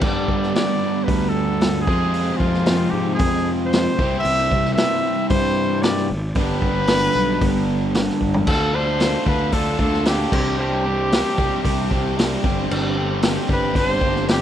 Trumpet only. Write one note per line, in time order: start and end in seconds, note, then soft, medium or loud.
0.02 0.54 D5 medium
0.54 1.05 D5 medium
1.04 1.30 B4 medium
1.29 1.81 A4 medium
1.81 2.38 G#4 medium
2.37 2.92 F4 medium
2.90 3.14 G4 medium
3.15 3.51 G#4 loud
3.66 4.18 C5 loud
4.19 4.71 E5 loud
4.74 5.25 E5 loud
5.29 5.83 C5 loud
5.82 6.09 D5 medium
6.36 7.91 B4 loud
8.47 8.76 A4 loud
8.75 9.26 C5 loud
9.27 9.54 B4 loud
9.53 9.79 A4 loud
9.80 10.04 A4 medium
10.07 10.56 G4 medium
10.59 12.39 G4 loud
13.52 13.79 B4 loud
13.77 14.28 C5 loud
14.29 14.42 G4 medium